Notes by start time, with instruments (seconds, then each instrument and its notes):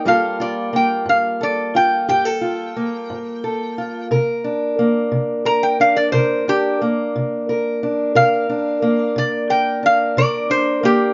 0.05 steel-string acoustic guitar G2 G3 A#3 F4 A4, resonator guitar played with a steel bar F5
0.40 steel-string acoustic guitar F4, resonator guitar played with a steel bar D5
0.73 steel-string acoustic guitar A#3, resonator guitar played with a steel bar G5
1.06 steel-string acoustic guitar G2, resonator guitar played with a steel bar F5
1.41 steel-string acoustic guitar A4, resonator guitar played with a steel bar D5
1.75 steel-string acoustic guitar F4, resonator guitar played with a steel bar G5
2.09 steel-string acoustic guitar G2 G4, resonator guitar played with a steel bar G5
2.25 steel-string acoustic guitar A4
2.41 steel-string acoustic guitar F4
2.76 steel-string acoustic guitar A#3
3.10 steel-string acoustic guitar G2
3.44 steel-string acoustic guitar A4
3.78 steel-string acoustic guitar F4
4.11 steel-string acoustic guitar C3 A#4
4.44 steel-string acoustic guitar D4
4.79 steel-string acoustic guitar A#3
5.12 steel-string acoustic guitar C3
5.45 steel-string acoustic guitar A#4, resonator guitar played with a steel bar A#5
5.63 resonator guitar played with a steel bar G5
5.80 steel-string acoustic guitar D4, resonator guitar played with a steel bar F5
5.97 resonator guitar played with a steel bar D5
6.12 steel-string acoustic guitar C3 A#4, resonator guitar played with a steel bar C5
6.48 steel-string acoustic guitar D4, resonator guitar played with a steel bar G4
6.82 steel-string acoustic guitar A#3
7.16 steel-string acoustic guitar C3
7.49 steel-string acoustic guitar A#4
7.83 steel-string acoustic guitar D4
8.15 steel-string acoustic guitar C3 A#4, resonator guitar played with a steel bar F5
8.49 steel-string acoustic guitar D4
8.82 steel-string acoustic guitar A#3
9.16 steel-string acoustic guitar C3, resonator guitar played with a steel bar D5
9.50 steel-string acoustic guitar A#4, resonator guitar played with a steel bar G5
9.83 steel-string acoustic guitar D4, resonator guitar played with a steel bar F5
10.17 steel-string acoustic guitar C3 A#4, resonator guitar played with a steel bar D5
10.50 steel-string acoustic guitar D4, resonator guitar played with a steel bar C5
10.83 steel-string acoustic guitar A#3, resonator guitar played with a steel bar G4